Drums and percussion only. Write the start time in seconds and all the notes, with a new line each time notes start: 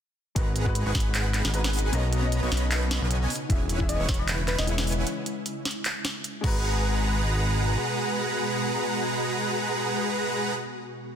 0.36 kick, closed hi-hat
0.56 closed hi-hat
0.66 kick
0.75 closed hi-hat
0.95 kick, snare, closed hi-hat
1.00 closed hi-hat
1.15 clap, closed hi-hat
1.34 clap, closed hi-hat
1.45 snare
1.54 closed hi-hat
1.64 snare
1.73 open hi-hat
1.79 closed hi-hat
1.93 closed hi-hat
2.13 closed hi-hat
2.32 closed hi-hat
2.52 snare, closed hi-hat
2.57 closed hi-hat
2.71 clap, closed hi-hat
2.91 snare, closed hi-hat
3.11 closed hi-hat
3.30 open hi-hat
3.36 closed hi-hat
3.50 kick, closed hi-hat
3.69 closed hi-hat
3.80 kick
3.89 closed hi-hat
4.09 kick, snare, closed hi-hat
4.14 closed hi-hat
4.28 clap, closed hi-hat
4.48 clap, closed hi-hat
4.59 snare
4.67 closed hi-hat
4.78 snare
4.87 open hi-hat
4.92 closed hi-hat
5.07 closed hi-hat
5.26 closed hi-hat
5.46 closed hi-hat
5.65 snare, closed hi-hat
5.71 closed hi-hat
5.85 clap, closed hi-hat
6.05 snare, closed hi-hat
6.24 closed hi-hat
6.44 kick, crash